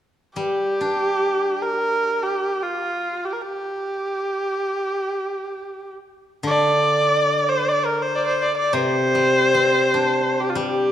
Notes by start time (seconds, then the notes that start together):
0.36 G3 G4
0.81 D4
1.62 A#4
2.22 G4
2.62 F4
3.25 G4
3.33 A#4
3.41 G4
6.43 D3 D5
7.49 C5
7.69 D5
7.85 A#4
8.02 C5
8.15 C5 D5
8.21 D5
8.27 C5
8.41 D5
8.57 D5
8.73 C3 C5
9.15 G3
9.54 C4
9.94 D4
10.40 G4
10.49 F4
10.55 G3 G4